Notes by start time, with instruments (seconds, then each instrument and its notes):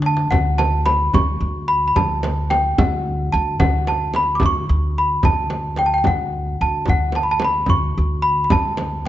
Already playing: double bass D2, upright bass D3
0.02 tombak tek
0.06 celesta A5
0.17 tombak ka
0.31 upright bass D2, celesta F#5, tombak dum, frame drum
0.58 celesta A5, tombak tek, frame drum
0.86 celesta B5, tombak tek, frame drum
1.13 upright bass D2, celesta C#6, tombak dum, frame drum
1.40 upright bass D2
1.68 celesta B5
1.88 celesta B5
1.96 upright bass D2, celesta A5, tombak dum, frame drum
2.23 tombak tek, frame drum
2.50 celesta G5, tombak tek, frame drum
2.78 upright bass D2, celesta F#5, tombak dum, frame drum
3.32 upright bass D2, celesta A5
3.60 upright bass D2, celesta F#5, tombak dum, frame drum
3.87 celesta A5, tombak tek, frame drum
4.14 celesta B5, tombak tek, frame drum
4.35 celesta D6
4.40 upright bass D2, frame drum, tombak dum
4.46 celesta C#6
4.69 upright bass D2
4.98 celesta B5
5.23 upright bass D2, celesta A5, tombak dum, frame drum
5.50 tombak tek, frame drum
5.76 celesta G5, tombak tek, frame drum
5.86 celesta A5
5.94 celesta G5
5.98 celesta G5
6.04 upright bass D2, celesta F#5, frame drum, tombak dum
6.33 tombak ka
6.61 upright bass D2, celesta A5
6.86 upright bass D2, frame drum, tombak dum
6.90 celesta F#5
7.12 celesta A5, tombak tek, frame drum
7.23 celesta B5
7.31 celesta A5
7.40 tombak tek, frame drum
7.44 celesta B5
7.66 upright bass D2, celesta C#6, frame drum, tombak dum
7.97 upright bass D2
8.22 celesta B5
8.44 celesta B5
8.50 upright bass D2, celesta A5, frame drum, tombak dum
8.77 tombak tek, frame drum